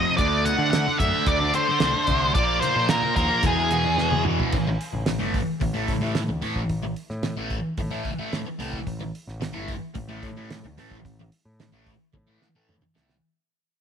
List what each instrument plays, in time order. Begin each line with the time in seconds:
Already playing: distorted electric guitar F2 C3 F3, lead electric guitar D#5
0.17 picked electric bass D2, distorted electric guitar D3 A3 D4, lead electric guitar D5, kick, closed hi-hat
0.45 lead electric guitar F#5, closed hi-hat, high conga
0.58 picked electric bass D3, distorted electric guitar D4
0.63 distorted electric guitar A3
0.71 distorted electric guitar D3 A3, picked electric bass D3, lead electric guitar F#5, snare, closed hi-hat
0.75 distorted electric guitar D4
0.86 muted distorted electric guitar stroke, high conga
0.99 picked electric bass F#2, distorted electric guitar D3 A3, lead electric guitar E5, kick, closed hi-hat, low conga
1.03 distorted electric guitar D4
1.27 picked electric bass D2, lead electric guitar D5, kick, closed hi-hat
1.41 distorted electric guitar A3 D4
1.53 distorted electric guitar D3 A3 D4, lead electric guitar C5, closed hi-hat
1.69 muted distorted electric guitar stroke
1.80 picked electric bass C2, distorted electric guitar D3 A3 D4, snare, closed hi-hat
1.94 distorted electric guitar A3 D4, high conga
2.07 picked electric bass C2, distorted electric guitar D3 A3, kick, closed hi-hat, low conga
2.11 distorted electric guitar D4
2.34 picked electric bass A#1, distorted electric guitar A#2 F3 A#3, lead electric guitar D5, kick, closed hi-hat
2.61 lead electric guitar C5, snare, closed hi-hat, high conga
2.76 picked electric bass A#2, distorted electric guitar F3 A#3
2.89 distorted electric guitar A#2 F3 A#3, picked electric bass A#2, lead electric guitar A#4, snare, closed hi-hat
3.02 muted distorted electric guitar stroke, high conga
3.16 picked electric bass D#2, distorted electric guitar A#2 F3 A#3, lead electric guitar A#4, kick, closed hi-hat
3.42 distorted electric guitar E2 B2 E3, picked electric bass E2, kick, closed hi-hat, high conga
3.46 lead electric guitar G#4
3.55 distorted electric guitar B2 E3
3.70 distorted electric guitar E2 B2 E3, closed hi-hat
3.85 muted distorted electric guitar stroke
3.98 distorted electric guitar E2 B2 E3, snare
4.11 distorted electric guitar B2 E3, high tom, high conga
4.24 distorted electric guitar E2 B2, mid tom, low conga
4.29 distorted electric guitar E3
4.40 floor tom
4.52 picked electric bass A1, kick, crash
4.67 muted distorted electric guitar stroke
4.81 open hi-hat
4.93 picked electric bass A1, high conga
5.06 muted distorted electric guitar stroke, snare, open hi-hat
5.19 picked electric bass G1, distorted electric guitar A2 E3 A3, high conga
5.34 kick, open hi-hat, low conga
5.60 picked electric bass A1, muted distorted electric guitar stroke, kick, open hi-hat, high conga
5.74 distorted electric guitar A2 E3 A3, low conga
5.88 picked electric bass A2, kick, open hi-hat, high conga
6.01 distorted electric guitar A2 E3 A3, high conga
6.15 snare, open hi-hat
6.28 picked electric bass D2, muted distorted electric guitar stroke
6.41 distorted electric guitar A2 E3 A3, open hi-hat, low conga
6.56 picked electric bass A1, kick
6.69 picked electric bass A1, kick, open hi-hat
6.83 muted distorted electric guitar stroke
6.96 open hi-hat
7.10 picked electric bass A2, snare
7.23 muted distorted electric guitar stroke, snare, open hi-hat
7.37 picked electric bass A1, distorted electric guitar A2 E3 A3, high conga
7.50 kick, open hi-hat, low conga
7.77 picked electric bass A2, muted distorted electric guitar stroke, kick, open hi-hat, high conga
7.91 distorted electric guitar A2 E3 A3, low conga
8.05 kick, open hi-hat, high conga
8.18 distorted electric guitar A2 E3 A3
8.33 picked electric bass A2, snare, open hi-hat
8.45 muted distorted electric guitar stroke
8.59 picked electric bass C2, distorted electric guitar A2 E3 A3, open hi-hat, low conga
8.73 kick
8.87 picked electric bass A1, kick, open hi-hat
9.00 muted distorted electric guitar stroke
9.15 open hi-hat
9.27 picked electric bass A1, snare
9.41 muted distorted electric guitar stroke, snare, open hi-hat
9.53 picked electric bass G1, distorted electric guitar A2 E3 A3
9.68 kick, open hi-hat
9.94 picked electric bass A1, muted distorted electric guitar stroke, kick, open hi-hat
10.09 distorted electric guitar A2 E3 A3
10.23 picked electric bass A2, kick, open hi-hat
10.37 distorted electric guitar A2 E3 A3
10.50 snare, open hi-hat
10.64 picked electric bass D2, muted distorted electric guitar stroke
10.78 distorted electric guitar A2 E3 A3, open hi-hat
10.91 picked electric bass A1, kick
11.05 picked electric bass A1, kick, open hi-hat
11.19 muted distorted electric guitar stroke
11.32 open hi-hat
11.45 picked electric bass A2
11.60 muted distorted electric guitar stroke, snare, open hi-hat
11.72 picked electric bass A1, distorted electric guitar A2 E3 A3
11.86 kick, open hi-hat
12.13 picked electric bass A2, muted distorted electric guitar stroke, kick, high tom
12.27 distorted electric guitar A2 E3 A3
12.42 snare
12.55 distorted electric guitar A2 E3 A3
12.69 picked electric bass A2, mid tom
12.81 muted distorted electric guitar stroke, mid tom
12.95 picked electric bass C2, distorted electric guitar A2 E3 A3, snare
13.09 snare